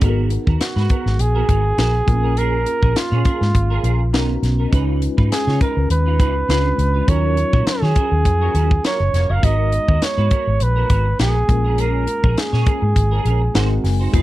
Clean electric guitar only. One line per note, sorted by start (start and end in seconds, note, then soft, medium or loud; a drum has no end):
0.02 0.29 B3 medium
0.02 0.29 F#4 medium
0.02 0.30 A#4 medium
0.31 muted clean electric guitar stroke soft
0.47 0.59 B3 soft
0.47 0.60 F#4 medium
0.47 0.59 A#4 medium
0.61 muted clean electric guitar stroke soft
0.76 0.88 B3 soft
0.76 0.89 F#4 medium
0.76 0.91 B4 medium
0.90 1.05 B3 medium
0.90 1.05 F#4 medium
0.90 1.05 A#4 medium
1.06 muted clean electric guitar stroke soft
1.19 muted clean electric guitar stroke soft
1.35 1.47 B3 medium
1.35 1.48 F#4 medium
1.35 1.49 A#4 medium
1.48 1.63 B3 soft
1.48 1.64 F#4 medium
1.48 1.63 A#4 medium
1.64 muted clean electric guitar stroke soft
1.78 1.96 B3 medium
1.78 1.94 F#4 medium
1.78 1.93 A#4 medium
1.94 muted clean electric guitar stroke soft
2.08 muted clean electric guitar stroke soft
2.23 2.36 C#4 soft
2.23 2.36 G#4 soft
2.23 2.36 A#4 medium
2.37 2.64 C#4 medium
2.37 2.65 G#4 medium
2.37 2.65 A#4 medium
2.66 muted clean electric guitar stroke soft
2.82 2.94 C#4 soft
2.82 2.95 G#4 medium
2.82 2.95 A#4 medium
2.95 muted clean electric guitar stroke soft
3.11 3.24 C#4 medium
3.11 3.25 G#4 medium
3.11 3.26 C#5 medium
3.25 3.40 C#4 medium
3.25 3.40 G#4 medium
3.25 3.39 A#4 medium
3.41 muted clean electric guitar stroke soft
3.54 muted clean electric guitar stroke soft
3.70 3.83 C#4 medium
3.70 3.83 G#4 medium
3.70 3.84 A#4 medium
3.84 3.99 C#4 medium
3.84 3.99 G#4 medium
3.84 3.98 A#4 medium
4.00 muted clean electric guitar stroke soft
4.13 4.32 B3 medium
4.13 4.29 D#4 medium
4.13 4.28 A#4 medium
4.29 muted clean electric guitar stroke soft
4.43 muted clean electric guitar stroke soft
4.59 4.71 B3 soft
4.59 4.71 D#4 soft
4.59 4.71 A#4 medium
4.72 4.99 D#4 medium
4.72 5.00 F4 medium
4.72 5.00 B4 medium
5.02 muted clean electric guitar stroke soft
5.17 5.30 D#4 soft
5.17 5.30 F4 medium
5.17 5.30 B4 medium
5.31 muted clean electric guitar stroke soft
5.47 5.59 D#4 medium
5.47 5.60 F4 medium
5.47 5.62 C#5 medium
5.60 5.75 D#4 medium
5.60 5.76 F4 medium
5.60 5.75 B4 medium
5.77 muted clean electric guitar stroke soft
5.90 muted clean electric guitar stroke soft
6.06 6.18 D#4 soft
6.06 6.19 F4 medium
6.06 6.18 B4 medium
6.19 6.38 D#4 medium
6.19 6.35 F4 medium
6.19 6.34 B4 medium
6.35 muted clean electric guitar stroke soft
6.48 6.67 D4 medium
6.48 6.64 F4 medium
6.48 6.63 B4 medium
6.64 muted clean electric guitar stroke soft
6.78 muted clean electric guitar stroke soft
6.94 7.07 D4 soft
6.94 7.07 F4 soft
6.94 7.07 B4 medium
7.07 7.35 C#4 medium
7.07 7.35 F#4 medium
7.07 7.36 A#4 medium
7.37 muted clean electric guitar stroke soft
7.53 7.65 C#4 soft
7.53 7.66 F#4 medium
7.53 7.65 A#4 medium
7.66 muted clean electric guitar stroke soft
7.82 7.95 C#4 medium
7.82 7.95 F#4 medium
7.82 7.97 C#5 medium
7.96 8.11 C#4 medium
7.96 8.11 F#4 medium
7.96 8.11 A#4 medium
8.12 muted clean electric guitar stroke soft
8.25 muted clean electric guitar stroke soft
8.41 8.54 C#4 medium
8.41 8.55 F#4 medium
8.41 8.55 A#4 medium
8.55 8.70 C#4 medium
8.55 8.70 F#4 medium
8.55 8.70 A#4 medium
8.84 9.02 C#4 medium
8.84 9.00 F#4 medium
8.84 8.99 A#4 medium
9.00 muted clean electric guitar stroke soft
9.13 muted clean electric guitar stroke soft
9.29 9.42 C#4 soft
9.29 9.42 F#4 medium
9.29 9.42 A#4 medium
9.43 9.70 B3 medium
9.43 9.71 F#4 medium
9.43 9.71 A#4 medium
9.72 muted clean electric guitar stroke soft
9.88 10.00 B3 soft
9.88 10.01 F#4 soft
9.88 10.01 A#4 medium
10.01 muted clean electric guitar stroke soft
10.17 10.29 B3 medium
10.17 10.30 F#4 medium
10.17 10.32 B4 medium
10.31 10.46 B3 medium
10.31 10.46 F#4 medium
10.31 10.45 A#4 medium
10.46 muted clean electric guitar stroke soft
10.60 muted clean electric guitar stroke soft
10.76 10.88 B3 medium
10.76 10.89 F#4 medium
10.76 10.90 A#4 medium
10.89 11.04 B3 medium
10.89 11.05 F#4 medium
10.89 11.05 A#4 medium
11.06 muted clean electric guitar stroke soft
11.19 11.38 B3 medium
11.19 11.35 F#4 medium
11.19 11.34 A#4 medium
11.35 muted clean electric guitar stroke soft
11.49 muted clean electric guitar stroke soft
11.64 11.77 C#4 soft
11.64 11.78 G#4 medium
11.64 11.77 A#4 medium
11.78 12.05 C#4 medium
11.78 12.06 G#4 medium
11.78 12.06 A#4 medium
12.07 muted clean electric guitar stroke soft
12.23 12.36 C#4 soft
12.23 12.36 G#4 medium
12.23 12.36 A#4 medium
12.37 muted clean electric guitar stroke soft
12.53 12.65 C#4 medium
12.53 12.66 G#4 medium
12.53 12.67 C#5 medium
12.66 12.81 C#4 medium
12.66 12.81 G#4 medium
12.66 12.81 A#4 medium
12.82 muted clean electric guitar stroke soft
12.95 muted clean electric guitar stroke soft
13.11 13.23 C#4 medium
13.11 13.24 G#4 medium
13.11 13.25 A#4 medium
13.25 13.40 C#4 medium
13.25 13.40 G#4 medium
13.25 13.39 A#4 medium
13.41 muted clean electric guitar stroke medium
13.54 13.73 D#4 medium
13.54 13.70 F#4 medium
13.54 13.69 C5 medium
13.70 muted clean electric guitar stroke soft
13.84 muted clean electric guitar stroke soft
13.99 14.12 D#4 soft
13.99 14.13 F#4 soft
13.99 14.12 C5 medium
14.13 14.22 D#4 medium
14.13 14.22 G#4 medium
14.13 14.22 B4 medium